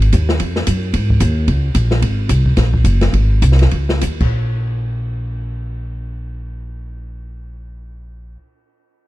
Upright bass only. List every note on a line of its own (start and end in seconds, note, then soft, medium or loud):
0.00 0.12 G#1 medium
0.13 0.40 D#2 medium
0.40 0.66 F2 medium
0.67 0.93 F#2 medium
0.93 1.20 G#2 medium
1.21 1.47 D#2 medium
1.48 1.74 C#2 medium
1.75 2.01 A#1 medium
2.02 2.29 G#1 medium
2.29 2.56 C2 medium
2.57 2.84 A#1 medium
2.84 3.12 F#1 medium
3.13 3.41 G#1 medium
3.42 3.71 C2 medium
3.72 4.01 C#2 medium
4.03 4.20 D#2 medium
4.21 8.35 A#1 medium